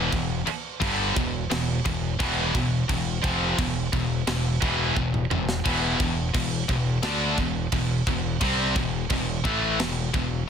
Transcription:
0.00 0.11 E2 medium
0.00 0.11 B2 loud
0.00 0.11 E3 loud
0.12 0.44 E1 medium
0.12 0.40 E2 medium
0.12 0.40 B2 medium
0.12 kick loud
0.12 crash medium
0.46 muted distorted electric guitar stroke medium
0.46 muted fingered electric bass stroke soft
0.46 crash medium
0.80 1.13 G1 loud
0.80 1.14 G2 loud
0.80 1.15 D3 loud
0.80 1.15 G3 loud
0.80 kick loud
0.80 crash medium
1.15 1.48 E1 medium
1.15 1.43 E2 medium
1.15 1.44 B2 medium
1.15 kick loud
1.15 crash medium
1.50 1.83 E1 medium
1.50 1.78 E2 medium
1.50 1.78 B2 medium
1.50 snare loud
1.50 crash medium
1.85 2.17 E1 medium
1.85 2.13 E2 medium
1.85 2.13 B2 medium
1.85 kick medium
1.85 crash medium
2.19 2.52 E1 loud
2.19 2.53 E2 loud
2.19 2.53 B2 loud
2.19 2.54 E3 loud
2.19 kick loud
2.19 crash medium
2.54 2.87 E1 medium
2.54 2.82 E2 medium
2.54 2.82 B2 medium
2.54 kick loud
2.54 crash medium
2.89 3.21 E1 medium
2.89 3.17 E2 medium
2.89 3.17 B2 medium
2.89 kick loud
2.89 crash medium
3.24 3.56 F1 loud
3.24 3.57 F2 loud
3.24 3.57 C3 loud
3.24 3.58 F3 loud
3.24 kick loud
3.24 crash medium
3.58 3.90 E1 medium
3.58 3.86 E2 medium
3.58 3.86 B2 medium
3.58 kick loud
3.58 crash medium
3.93 4.25 E1 medium
3.93 4.21 E2 medium
3.93 4.21 B2 medium
3.93 kick medium
3.93 crash medium
4.27 4.59 E1 medium
4.27 4.55 E2 medium
4.27 4.55 B2 medium
4.27 snare loud
4.27 crash loud
4.62 4.96 E2 loud
4.62 4.96 B2 medium
4.62 4.96 E3 loud
4.62 kick loud
4.62 crash medium
4.96 5.29 E1 medium
4.96 5.24 E2 medium
4.96 5.25 B2 medium
4.96 kick medium
5.14 mid tom medium
5.30 5.63 E1 medium
5.30 5.59 E2 medium
5.30 5.59 B2 medium
5.30 mid tom loud
5.49 snare loud
5.65 5.98 E1 loud
5.65 5.99 E2 loud
5.65 5.99 B2 loud
5.65 6.00 E3 loud
5.65 kick loud
5.65 crash medium
5.99 6.32 E1 medium
5.99 6.28 E2 medium
5.99 6.28 B2 medium
5.99 kick loud
5.99 crash medium
6.34 6.67 E1 medium
6.34 6.62 E2 medium
6.34 6.62 B2 medium
6.34 kick loud
6.34 crash medium
6.68 7.01 E1 medium
6.68 6.97 E2 medium
6.68 6.97 B2 medium
6.68 kick medium
6.68 crash medium
7.03 7.36 D2 medium
7.03 7.37 D3 medium
7.03 7.37 A3 loud
7.03 7.37 D4 loud
7.03 snare loud
7.03 crash medium
7.38 7.70 E1 medium
7.38 7.66 E2 medium
7.38 7.66 B2 medium
7.38 kick medium
7.38 crash medium
7.72 8.05 E1 medium
7.72 8.00 E2 medium
7.72 8.00 B2 medium
7.72 kick loud
7.72 crash medium
8.07 8.39 E1 medium
8.07 8.35 E2 medium
8.07 8.35 B2 medium
8.07 kick loud
8.07 crash medium
8.41 8.74 C2 loud
8.41 8.75 C3 loud
8.41 8.75 G3 loud
8.41 8.76 C4 loud
8.41 kick loud
8.41 crash medium
8.76 9.08 E1 medium
8.76 9.04 E2 medium
8.76 9.04 B2 medium
8.76 kick loud
8.76 crash medium
9.10 9.43 E1 medium
9.10 9.38 E2 medium
9.10 9.39 B2 medium
9.10 kick medium
9.10 crash medium
9.44 9.77 A1 loud
9.44 9.78 A2 medium
9.44 9.78 E3 loud
9.44 9.79 A3 loud
9.44 kick loud
9.44 crash medium
9.79 10.12 E1 medium
9.79 10.07 E2 medium
9.79 10.07 B2 medium
9.79 snare loud
9.79 crash medium
10.14 10.46 E1 medium
10.14 10.41 E2 medium
10.14 10.41 B2 medium
10.14 kick medium
10.14 crash medium

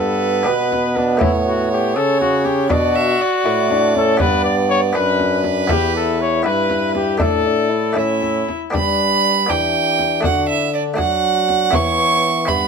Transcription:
0.00 0.43 G2 medium
0.00 0.48 G2 medium
0.00 0.42 B3 medium
0.00 1.98 B3 medium
0.00 0.43 D4 soft
0.00 0.44 G4 medium
0.00 0.47 A4 loud
0.00 1.21 B4 medium
0.43 1.23 B2 medium
0.43 1.17 B2 medium
0.43 1.17 B3 medium
0.43 1.18 D4 medium
0.43 1.18 G4 medium
0.43 0.98 B4 loud
0.72 frame drum medium
0.97 1.20 D4 medium
0.97 frame drum medium
1.17 1.92 A2 medium
1.17 2.64 A3 medium
1.17 2.65 C#4 medium
1.17 2.66 E4 medium
1.17 1.32 E4 medium
1.21 1.98 A2 medium
1.21 2.68 C#5 medium
1.21 frame drum medium
1.46 1.71 F#4 loud
1.72 1.97 G4 loud
1.95 2.71 C#3 medium
1.95 2.67 C#3 medium
1.95 2.72 C#4 medium
1.95 2.20 A4 loud
2.21 2.47 F#4 loud
2.21 frame drum medium
2.45 2.70 G4 loud
2.45 frame drum medium
2.70 3.18 B2 medium
2.70 3.16 B2 medium
2.70 4.16 B3 medium
2.70 4.16 D4 medium
2.70 3.19 D4 medium
2.70 3.93 F#4 loud
2.70 2.97 D5 medium
2.70 frame drum medium
2.95 3.22 E5 medium
3.21 4.20 D5 medium
3.45 4.16 A2 medium
3.45 4.22 A2 medium
3.45 3.68 E4 medium
3.70 3.95 D4 medium
3.70 frame drum soft
3.95 4.23 C#4 medium
3.95 4.19 A4 loud
3.95 frame drum medium
4.17 4.91 G2 medium
4.17 4.95 G2 medium
4.17 4.91 B3 medium
4.17 4.92 D4 medium
4.17 4.44 B4 loud
4.17 4.96 D5 medium
4.17 frame drum medium
4.21 4.97 B3 medium
4.44 4.56 D5 loud
4.69 4.81 C#5 loud
4.93 5.66 F#2 medium
4.93 5.72 F#2 medium
4.93 5.66 B3 medium
4.93 5.67 D4 medium
4.93 5.70 D4 medium
4.93 5.42 B4 loud
4.93 6.44 B4 medium
5.20 frame drum soft
5.44 frame drum medium
5.67 6.41 E2 medium
5.67 6.47 E2 medium
5.67 6.41 B3 medium
5.67 6.42 E4 medium
5.67 7.21 E4 medium
5.67 5.93 G4 loud
5.67 frame drum medium
5.96 6.23 A4 loud
6.21 6.44 C#5 loud
6.43 7.20 G2 medium
6.43 7.17 G2 medium
6.43 7.17 B3 medium
6.43 7.18 E4 medium
6.43 7.19 B4 medium
6.43 6.94 B4 loud
6.70 frame drum medium
6.95 7.19 G4 medium
6.95 frame drum medium
7.18 7.95 A2 medium
7.18 7.92 A3 soft
7.18 7.93 D4 soft
7.18 7.45 D4 medium
7.18 7.94 E4 soft
7.18 8.00 A4 loud
7.18 8.00 D5 medium
7.18 frame drum medium
7.22 7.93 A2 medium
7.45 7.71 D4 medium
7.70 7.97 E4 medium
7.93 8.44 A2 medium
7.93 8.47 A2 medium
7.93 8.69 A3 soft
7.93 8.70 C#4 soft
7.93 8.47 C#4 medium
7.93 8.71 E4 soft
7.98 8.74 E4 medium
7.98 8.54 E5 medium
8.22 frame drum soft
8.49 frame drum soft
8.70 9.45 G3 soft
8.70 9.45 G3 medium
8.70 9.45 B3 soft
8.70 9.45 D4 soft
8.70 9.44 D4 medium
8.70 9.46 G4 soft
8.70 frame drum medium
8.75 9.51 B4 medium
8.75 9.51 B5 medium
9.46 10.26 E3 medium
9.46 10.20 B3 soft
9.46 10.21 D4 soft
9.46 10.22 D4 medium
9.46 10.21 G4 soft
9.46 10.24 G4 medium
9.46 10.24 G5 medium
9.46 frame drum soft
9.50 10.20 E3 medium
9.99 frame drum soft
10.21 11.00 D3 medium
10.21 10.94 D3 soft
10.21 10.93 A3 soft
10.21 10.95 D4 soft
10.21 10.97 D4 medium
10.21 10.96 F#4 soft
10.21 10.48 F#4 medium
10.21 frame drum medium
10.25 10.48 F#5 medium
10.49 10.72 E4 medium
10.49 10.73 E5 medium
10.73 10.97 D4 medium
10.73 10.82 D5 medium
10.94 11.69 A3 soft
10.94 11.70 D4 soft
10.94 11.75 D4 medium
10.94 11.70 F#4 soft
10.98 11.69 F#3 medium
10.98 11.73 F#3 medium
10.98 11.74 F#4 medium
10.98 11.75 F#5 medium
10.98 frame drum soft
11.49 frame drum soft
11.71 12.44 E3 soft
11.71 12.50 E3 medium
11.71 12.44 B3 soft
11.71 12.48 B3 medium
11.71 12.45 E4 soft
11.71 12.30 C#5 medium
11.71 12.49 C#6 loud
11.71 frame drum medium
12.45 12.68 G2 medium
12.45 12.68 B3 soft
12.45 12.68 B3 medium
12.45 12.68 E4 soft
12.45 12.68 B4 medium
12.45 12.68 B5 medium
12.45 frame drum soft

